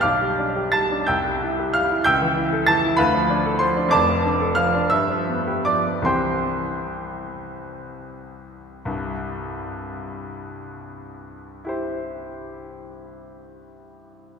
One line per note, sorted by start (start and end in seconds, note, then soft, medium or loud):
0.01 1.04 B1 medium
0.01 0.69 F5 medium
0.01 0.69 D6 medium
0.01 0.72 F6 loud
0.21 0.49 G3 medium
0.39 0.66 D4 medium
0.56 0.83 G4 medium
0.72 1.01 G3 medium
0.72 1.05 A5 medium
0.72 1.06 A6 loud
0.91 1.08 D4 medium
1.07 2.04 C2 medium
1.07 1.71 G5 medium
1.07 1.71 E6 medium
1.07 1.74 G6 medium
1.25 1.52 G3 medium
1.42 1.68 E4 medium
1.59 1.85 G4 medium
1.74 2.01 G3 medium
1.74 2.04 F5 medium
1.74 2.06 F6 loud
1.91 2.06 E4 medium
2.04 2.96 C#2 medium
2.04 2.64 G5 medium
2.04 2.64 E6 medium
2.04 2.67 G6 loud
2.22 2.47 E3 medium
2.37 2.62 E4 medium
2.53 2.77 A4 medium
2.67 2.93 E3 medium
2.67 2.96 A5 loud
2.67 2.98 A6 loud
2.84 2.99 E4 medium
2.97 3.89 D2 medium
2.97 3.56 B4 medium
2.97 3.56 F5 medium
2.97 3.59 B5 loud
3.14 3.39 F3 medium
3.30 3.54 D4 medium
3.46 3.70 A4 medium
3.59 3.86 F3 medium
3.59 3.89 C5 medium
3.59 3.91 C6 loud
3.77 3.92 D4 medium
3.89 4.88 F1 medium
3.89 4.86 F2 medium
3.89 4.52 D5 medium
3.89 4.52 A5 medium
3.89 4.56 D6 loud
4.09 4.34 F3 medium
4.25 4.50 D4 medium
4.41 4.67 A4 medium
4.55 4.84 F3 medium
4.55 4.89 F5 medium
4.55 4.90 F6 loud
4.75 4.92 D4 medium
4.90 6.03 G2 medium
4.90 5.62 E5 medium
4.90 5.65 E6 loud
5.10 5.40 F3 medium
5.28 5.59 B3 medium
5.47 5.78 G4 medium
5.65 5.99 F3 medium
5.65 6.03 D5 medium
5.65 6.06 D6 loud
5.87 6.07 B3 medium
6.02 8.79 C2 medium
6.02 8.79 E3 soft
6.02 8.80 C4 medium
6.02 8.81 G4 medium
6.02 7.35 G5 medium
6.02 7.38 C6 medium
6.06 7.35 C5 medium
8.85 12.89 C2 medium
8.85 12.89 G2 medium
11.65 14.39 E4 medium
11.65 14.39 G4 soft
11.65 14.39 C5 medium